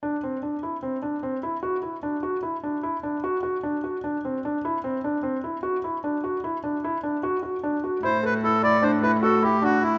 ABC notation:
X:1
M:5/4
L:1/8
Q:1/4=150
K:Clyd
V:1 name="Accordion"
z8 z2 | z8 z2 | z8 z2 | z8 z2 |
c B A d c B A G F E |]
V:2 name="Felt piano"
D C D E C D C E F E | D F E D E D F F D F | D C D E C D C E F E | D F E D E D F F D F |
E A E E D E F E D E |]
V:3 name="Cello" clef=bass
z8 z2 | z8 z2 | z8 z2 | z8 z2 |
A,,8- A,,2 |]